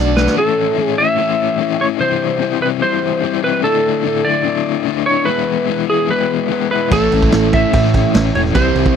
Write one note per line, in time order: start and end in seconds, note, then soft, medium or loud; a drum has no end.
0.00 0.27 B1 medium
0.00 0.16 A3 medium
0.00 0.17 A3 medium
0.00 0.37 D4 medium
0.00 0.38 D4 medium
0.00 0.16 F#4 medium
0.00 0.17 F#4 medium
0.00 0.37 F#4 medium
0.00 0.15 D5 medium
0.00 0.16 D5 medium
0.16 0.36 A3 medium
0.16 0.38 D4 medium
0.16 0.38 F#4 medium
0.16 0.36 B4 medium
0.16 0.37 D5 medium
0.16 snare medium
0.27 snare medium
0.36 0.76 A2 medium
0.36 0.77 E3 loud
0.36 0.78 A3 medium
0.36 0.78 C#4 loud
0.36 0.80 E4 loud
0.36 0.83 A4 loud
0.77 1.18 A2 medium
0.77 1.18 E3 loud
0.77 1.00 A3 loud
0.77 0.99 C#4 loud
0.77 0.98 E4 loud
0.83 1.01 G#4 loud
0.98 1.18 A3 medium
0.98 1.19 C#4 medium
0.98 1.21 E4 medium
0.98 1.83 E5 loud
1.18 1.59 E3 medium
1.18 1.59 A3 medium
1.18 1.60 C#4 medium
1.18 1.62 E4 medium
1.59 2.00 E3 medium
1.59 1.81 A3 medium
1.59 1.79 C#4 medium
1.59 1.78 E4 medium
1.78 2.00 A3 medium
1.78 2.00 C#4 medium
1.78 2.03 E4 medium
1.78 1.87 C#5 loud
1.99 2.39 C3 medium
1.99 2.40 E3 loud
1.99 2.40 G3 medium
1.99 2.41 C4 medium
1.99 2.43 E4 medium
1.99 2.62 C5 loud
2.40 2.82 C3 loud
2.40 2.81 E3 loud
2.40 2.63 G3 loud
2.40 2.61 C4 loud
2.40 2.60 E4 loud
2.61 2.82 G3 medium
2.61 2.83 C4 medium
2.61 2.84 E4 medium
2.61 2.68 B4 medium
2.81 3.22 E3 medium
2.81 3.22 G3 medium
2.81 3.23 C4 medium
2.81 3.26 E4 medium
2.81 3.40 C5 loud
3.23 3.62 E3 medium
3.23 3.45 G3 medium
3.23 3.43 C4 medium
3.23 3.42 E4 loud
3.42 3.64 G3 medium
3.42 3.63 C4 medium
3.42 3.66 E4 medium
3.42 3.63 B4 medium
3.63 4.03 D3 medium
3.63 4.04 A3 loud
3.63 4.05 D4 loud
3.63 4.07 E4 loud
3.63 4.27 A4 loud
4.04 4.43 D3 medium
4.04 4.26 A3 loud
4.04 4.25 D4 loud
4.04 4.23 E4 loud
4.24 4.45 A3 medium
4.24 4.46 D4 medium
4.24 4.47 E4 medium
4.24 5.06 D5 loud
4.44 4.84 D3 medium
4.44 4.85 A3 medium
4.44 4.86 D4 medium
4.44 4.88 E4 loud
4.85 5.26 D3 medium
4.85 5.08 A3 medium
4.85 5.06 D4 medium
4.85 5.06 E4 medium
5.06 5.27 A3 medium
5.06 5.27 D4 medium
5.06 5.30 E4 medium
5.06 5.28 C#5 loud
5.25 5.67 E3 medium
5.25 5.68 G#3 loud
5.25 5.69 B3 loud
5.25 5.84 B4 loud
5.30 5.71 E4 loud
5.68 6.08 E3 medium
5.68 5.90 G#3 loud
5.68 5.89 B3 loud
5.68 5.88 E4 loud
5.88 6.09 G#3 medium
5.88 6.10 B3 medium
5.88 6.12 E4 medium
5.88 6.11 G#4 medium
6.09 6.49 E3 medium
6.09 6.49 G#3 medium
6.09 6.51 B3 medium
6.09 6.52 E4 medium
6.09 6.70 B4 loud
6.49 6.92 E3 medium
6.49 6.73 G#3 medium
6.49 6.71 B3 medium
6.49 6.70 E4 medium
6.71 6.92 G#3 medium
6.71 6.91 B3 medium
6.71 6.94 E4 medium
6.71 6.90 B4 medium
6.91 7.07 A1 loud
6.91 7.30 A2 medium
6.91 7.32 E3 loud
6.91 7.32 A3 medium
6.91 7.33 C#4 loud
6.91 7.35 E4 loud
6.91 7.55 A4 loud
6.91 7.11 A4 medium
6.91 kick loud
6.91 crash loud
7.12 7.28 A1 loud
7.12 7.32 A3 soft
7.12 7.32 C#4 medium
7.12 7.33 E4 medium
7.12 7.32 A4 medium
7.12 crash medium
7.22 kick medium
7.31 7.64 A1 medium
7.31 7.73 A2 loud
7.31 7.72 E3 loud
7.31 7.55 A3 medium
7.31 7.53 C#4 loud
7.31 7.52 E4 loud
7.31 7.52 A4 medium
7.31 snare loud
7.31 crash medium
7.53 7.73 A3 medium
7.53 7.74 C#4 medium
7.53 7.75 E4 medium
7.53 7.74 A4 medium
7.53 8.31 E5 medium
7.53 kick loud
7.53 crash medium
7.72 8.05 A2 medium
7.72 8.13 E3 medium
7.72 8.14 A3 medium
7.72 8.15 C#4 medium
7.72 8.16 E4 medium
7.72 7.93 A4 medium
7.72 kick loud
7.72 crash medium
7.84 snare soft
7.94 8.13 A3 medium
7.94 8.14 C#4 soft
7.94 8.15 E4 medium
7.94 8.14 A4 medium
7.94 kick medium
7.94 crash medium
8.13 8.30 A1 medium
8.13 8.35 A2 loud
8.13 8.55 E3 medium
8.13 8.36 A3 medium
8.13 8.34 C#4 medium
8.13 8.33 E4 medium
8.13 8.34 A4 loud
8.13 snare loud
8.13 crash medium
8.33 8.50 E1 loud
8.33 8.55 A3 medium
8.33 8.54 C#4 medium
8.33 8.57 E4 medium
8.33 8.55 A4 medium
8.33 8.41 C#5 medium
8.33 crash medium
8.45 snare soft
8.54 8.70 C2 loud
8.54 8.94 C3 medium
8.54 8.95 E3 medium
8.54 8.96 G3 medium
8.54 8.96 C4 medium
8.54 8.96 E4 loud
8.54 8.74 G4 medium
8.54 8.96 C5 loud
8.54 kick loud
8.54 crash medium
8.75 8.91 C2 medium
8.75 8.95 C4 soft
8.75 8.96 E4 soft
8.75 8.96 G4 medium
8.75 crash medium
8.86 kick loud